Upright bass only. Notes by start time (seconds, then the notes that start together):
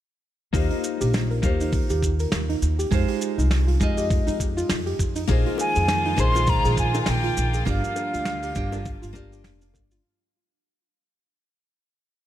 0.54 D#2
1.01 A#1
1.43 D#2
1.90 D#2
2.33 D#2
2.62 D#2
2.91 F2
3.38 C2
3.81 F2
4.27 F2
4.70 F2
4.99 F2
5.29 A#1
5.76 F2
6.18 A#1
6.64 A#1
7.07 A#1
7.37 A#1
7.67 G1
8.14 D2
8.56 G1
9.03 G1
9.46 F1
9.75 G1